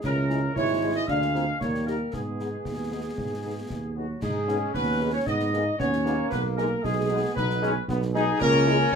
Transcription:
0.03 0.48 C#2 medium
0.03 0.53 E3 medium
0.03 0.53 G#3 medium
0.03 0.52 C#4 medium
0.03 0.52 A#4 loud
0.03 0.53 A#4 medium
0.03 concert bass drum medium
0.03 snare medium
0.03 crash soft
0.30 0.40 G#3 medium
0.30 0.40 E4 medium
0.30 0.40 G#4 medium
0.30 snare medium
0.55 1.00 G#1 medium
0.55 1.05 E3 medium
0.55 1.05 G#3 medium
0.55 1.04 E4 medium
0.55 0.92 C#5 loud
0.55 0.93 C#5 medium
0.55 concert bass drum medium
0.55 snare medium
0.83 0.92 G#3 medium
0.83 0.92 E4 medium
0.83 0.92 G#4 medium
0.95 1.07 D#5 loud
0.95 1.02 D#5 medium
1.07 1.52 D2 medium
1.07 1.57 G#3 medium
1.07 1.57 A#3 medium
1.07 1.20 D4 medium
1.07 1.60 F5 loud
1.07 1.58 F5 loud
1.07 concert bass drum medium
1.07 snare medium
1.22 snare medium
1.34 1.44 A#3 medium
1.34 1.46 C4 medium
1.34 1.44 F4 medium
1.34 1.44 G#4 medium
1.34 snare soft
1.59 2.04 D#2 medium
1.59 2.10 G3 medium
1.59 2.10 A#3 medium
1.59 1.84 C#5 medium
1.59 1.88 C#5 medium
1.59 concert bass drum medium
1.59 snare medium
1.75 snare medium
1.86 1.97 A#3 medium
1.86 1.96 D#4 medium
1.86 1.97 G4 medium
1.86 2.11 A#4 medium
1.86 snare medium
2.13 2.57 G#2 medium
2.13 3.97 G#3 medium
2.13 3.92 B3 medium
2.13 3.93 B3 medium
2.13 3.96 G#4 medium
2.13 3.92 G#4 medium
2.13 concert bass drum medium
2.13 snare medium
2.40 2.49 B3 medium
2.40 2.49 D#4 soft
2.40 2.49 G#4 soft
2.40 snare soft
2.65 3.09 D#2 medium
2.65 concert bass drum medium
2.65 snare medium
2.91 3.01 B3 soft
2.91 3.01 D#4 soft
2.91 3.01 G#4 soft
3.18 3.62 G#2 medium
3.18 concert bass drum medium
3.18 snare medium
3.44 3.53 B3 soft
3.44 3.53 D#4 soft
3.44 3.53 G#4 soft
3.70 4.14 D#2 medium
3.70 concert bass drum medium
3.70 snare medium
3.96 4.24 F#3 medium
3.96 4.05 B3 soft
3.96 4.05 D#4 soft
3.96 4.08 F#4 medium
3.96 4.21 F#4 medium
3.96 4.05 G#4 soft
4.22 4.66 G#2 medium
4.22 4.74 G#3 medium
4.22 4.47 D#4 medium
4.22 4.71 G#4 medium
4.22 concert bass drum medium
4.22 snare medium
4.22 crash soft
4.48 4.58 B3 medium
4.48 5.23 C#4 medium
4.48 4.58 D#4 medium
4.48 4.58 G#4 medium
4.48 snare medium
4.73 5.18 D#2 medium
4.73 5.16 B3 medium
4.73 5.13 B4 medium
4.73 5.11 B4 loud
4.73 concert bass drum medium
4.73 snare medium
5.01 5.10 B3 medium
5.01 5.10 D#4 medium
5.01 5.10 G#4 medium
5.13 5.29 C#4 medium
5.13 5.19 C#5 medium
5.13 5.26 C#5 medium
5.26 5.71 G#2 medium
5.26 5.53 B3 medium
5.26 5.79 D#4 medium
5.26 5.75 D#5 loud
5.26 5.79 D#5 loud
5.26 concert bass drum medium
5.26 snare medium
5.40 snare medium
5.53 5.65 A#3 medium
5.53 5.63 B3 medium
5.53 5.63 D#4 medium
5.53 5.63 G#4 medium
5.53 snare medium
5.78 6.23 D#2 medium
5.78 5.91 B3 medium
5.78 6.28 C#4 loud
5.78 6.27 C#5 loud
5.78 6.28 C#5 medium
5.78 concert bass drum medium
5.78 snare medium
5.93 snare medium
6.05 6.79 A#3 medium
6.05 6.15 B3 medium
6.05 6.15 D#4 medium
6.05 6.15 G#4 medium
6.05 snare medium
6.30 6.75 B1 medium
6.30 6.43 B3 medium
6.30 6.42 B4 loud
6.30 6.43 B4 medium
6.30 concert bass drum medium
6.30 snare medium
6.30 crash soft
6.56 6.67 G#3 medium
6.56 6.85 A#3 medium
6.56 6.67 D#4 medium
6.56 6.67 G#4 medium
6.56 6.81 A#4 medium
6.56 6.69 A#4 medium
6.56 snare medium
6.82 7.23 B1 loud
6.82 7.34 G#3 loud
6.82 6.95 G#3 medium
6.82 7.35 G#4 loud
6.82 7.32 G#4 medium
6.82 concert bass drum medium
6.82 snare medium
7.10 7.19 G#3 medium
7.10 7.34 B3 medium
7.10 7.19 D#4 medium
7.10 7.20 G#4 medium
7.35 7.80 B1 medium
7.35 7.84 B3 medium
7.35 7.62 D#4 medium
7.35 7.84 B4 loud
7.35 concert bass drum medium
7.35 snare medium
7.50 snare medium
7.62 7.72 G#3 medium
7.62 7.74 C#4 loud
7.62 7.72 D#4 medium
7.62 7.72 G#4 medium
7.62 snare medium
7.88 8.32 B1 loud
7.88 8.00 B3 loud
7.88 concert bass drum medium
7.88 snare medium
8.02 snare medium
8.14 8.26 G#3 loud
8.14 8.24 G#3 medium
8.14 8.24 D#4 medium
8.14 8.39 D#4 loud
8.14 8.38 G#4 loud
8.14 8.24 G#4 medium
8.14 8.39 G#4 loud
8.14 snare medium
8.39 8.84 C#2 loud
8.39 8.89 A#3 loud
8.39 8.95 C#4 loud
8.39 8.88 A#4 loud
8.39 8.92 A#4 loud
8.39 concert bass drum medium
8.39 snare medium
8.39 crash soft
8.67 8.76 G#3 medium
8.67 8.76 E4 medium
8.67 8.76 G#4 medium
8.67 snare medium
8.92 8.95 C#5 loud

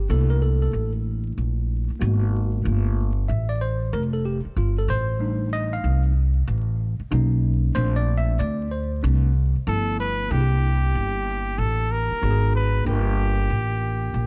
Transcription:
0.09 0.70 C2 loud
0.09 1.97 A3 medium
0.09 1.97 A#3 soft
0.09 1.97 D4 soft
0.09 1.97 E4 medium
0.09 0.29 A4 medium
0.30 0.42 A#4 medium
0.42 0.61 A4 medium
0.62 0.91 A4 medium
0.73 1.34 A1 medium
1.38 1.87 A#1 medium
1.90 muted upright bass stroke soft
2.00 2.62 G#1 loud
2.00 2.61 A#3 medium
2.00 2.61 B3 medium
2.00 2.61 F#4 medium
2.64 3.26 G1 medium
2.64 3.10 A3 medium
2.64 3.10 A#3 soft
2.64 3.10 F4 medium
3.28 3.89 A1 medium
3.28 3.49 E5 medium
3.49 3.61 D5 medium
3.61 3.94 C5 medium
3.93 4.42 F1 medium
3.93 4.02 A#4 medium
4.13 4.24 A4 medium
4.25 4.40 G4 medium
4.45 muted upright bass stroke soft
4.56 4.87 G1 medium
4.56 4.76 F4 medium
4.78 4.88 A4 medium
4.88 5.80 A1 medium
4.88 5.49 C5 loud
5.19 6.11 G3 medium
5.19 6.12 A3 soft
5.19 6.12 D4 medium
5.19 6.12 D#4 medium
5.53 5.73 D#5 loud
5.73 6.02 F5 medium
5.84 6.45 C2 medium
6.47 6.97 A1 medium
7.00 muted upright bass stroke soft
7.11 7.72 B1 loud
7.11 7.72 A#3 medium
7.11 7.72 C#4 medium
7.11 7.72 D#4 medium
7.74 8.36 A#1 loud
7.74 8.67 A3 medium
7.74 8.67 C4 soft
7.74 8.67 D4 medium
7.74 7.95 C5 medium
7.96 8.18 D5 loud
8.18 8.37 E5 loud
8.39 9.00 D2 medium
8.39 8.72 D5 medium
8.71 9.01 C5 medium
9.02 9.53 C2 loud
9.02 9.31 A3 medium
9.02 9.32 C4 soft
9.02 9.32 D4 medium
9.55 muted upright bass stroke soft
9.67 10.27 G1 loud
9.67 10.27 F3 medium
9.67 10.28 A3 medium
9.67 10.28 B3 medium
9.67 10.28 E4 medium
9.67 9.97 A4 medium
10.00 10.33 B4 medium
10.29 10.91 C2 medium
10.29 12.18 A#3 medium
10.29 12.18 D4 medium
10.29 12.19 E4 medium
10.29 11.60 G4 medium
10.34 10.40 G#4 medium
10.41 12.23 G4 medium
10.95 11.55 G1 medium
11.58 12.08 A1 medium
11.58 11.93 A4 medium
11.92 12.55 A#4 medium
12.11 muted upright bass stroke soft
12.22 12.83 G#1 medium
12.22 12.86 B3 medium
12.22 12.86 D#4 medium
12.22 12.86 F#4 medium
12.22 12.29 G#4 medium
12.31 12.90 G#4 medium
12.55 12.84 B4 medium
12.85 13.47 G1 loud
12.85 14.27 A#3 medium
12.85 14.27 D4 medium
12.85 14.27 F4 medium
12.85 14.27 G4 medium
12.89 14.27 A#4 medium
13.50 14.11 A1 medium
14.14 14.27 A#1 medium

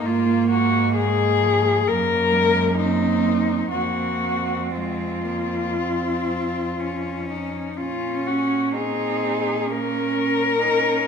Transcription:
0.00 1.88 A#3 medium
0.06 1.90 G#2 medium
0.06 0.98 A#3 medium
0.06 0.50 F4 loud
0.50 0.94 F#4 loud
0.95 1.44 G#3 medium
0.95 1.89 G#4 loud
1.43 1.86 F3 medium
1.87 3.71 F#2 medium
1.87 2.33 F#3 medium
1.87 2.82 A#3 medium
1.87 2.77 A#4 loud
2.32 2.78 G#3 medium
2.76 3.71 A#3 medium
2.76 3.70 D#4 loud
2.80 3.72 C4 medium
3.71 7.55 F2 medium
3.71 4.61 A#3 medium
3.71 7.26 C4 medium
3.71 4.73 F#4 medium
4.71 5.26 G#3 medium
4.71 7.29 F4 medium
5.25 5.78 A#3 medium
5.76 6.81 C4 medium
6.80 7.78 C#4 medium
7.30 7.79 D#4 medium
7.77 11.07 A#2 medium
7.77 8.74 C#4 medium
7.77 8.76 C#4 medium
7.77 8.28 F4 medium
8.26 8.74 F#4 medium
8.72 9.71 C4 medium
8.72 9.68 D#4 medium
8.72 9.72 G#4 medium
9.67 10.17 A#3 medium
9.67 10.60 C#4 medium
9.67 11.07 A#4 loud
10.15 11.07 C#4 medium
10.61 11.07 D#4 medium

